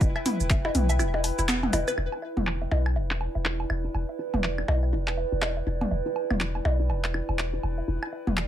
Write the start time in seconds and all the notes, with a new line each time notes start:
Already playing: E4 B4 E5 G5
0.01 E1, kick, percussion blips, shaker
0.16 E5, high woodblock, low woodblock
0.26 E4, mid tom, open hi-hat, shaker
0.40 E1, shaker
0.50 E5, kick, clap, low woodblock, shaker
0.65 E4, percussion blips
0.75 B1, mid tom, open hi-hat, shaker
0.89 E5, low woodblock, shaker
0.99 E1 E4, high woodblock, shaker
1.14 percussion blips
1.24 open hi-hat, low woodblock, shaker
1.39 E1 E4, shaker
1.48 B3, clap, shaker
1.63 mid tom, low woodblock
1.73 E1 E4, open hi-hat, percussion blips, shaker
1.88 B4, high woodblock, shaker
1.98 E1 E4, high woodblock
2.12 low woodblock
2.22 E5
2.37 E1 E4, mid tom
2.42 D5
2.47 clap, low woodblock
2.62 E5
2.71 B1 E4, percussion blips
2.86 high woodblock, low woodblock
2.96 E1 E5
3.11 E4, clap
3.21 low woodblock
3.35 E1 E5
3.45 E4, clap
3.60 low woodblock
3.70 E1 E5, high woodblock
3.84 E4
3.95 E1, low woodblock
4.09 E5
4.19 E4
4.34 E1, mid tom, low woodblock
4.44 E5, clap
4.58 E4, high woodblock
4.68 B1, percussion blips, low woodblock
4.83 E5
4.93 E1 E4
5.08 clap, low woodblock
5.17 E5
5.32 E1 E4
5.42 clap, percussion blips, high woodblock, low woodblock
5.57 E5
5.67 E1 E4
5.81 mid tom, low woodblock
5.91 E1 E5
6.06 E4
6.16 low woodblock
6.30 E1 E5, mid tom, high woodblock
6.40 E4, clap
6.55 low woodblock
6.65 B1 E5, percussion blips
6.80 E4
6.90 E1, low woodblock
7.04 E5, clap
7.14 E4, high woodblock
7.29 E1, low woodblock
7.39 E5, clap
7.53 E4
7.63 E1, low woodblock
7.78 E5
7.88 E1 E4
8.03 high woodblock, low woodblock
8.13 E5
8.27 E1 E4, mid tom
8.37 clap, low woodblock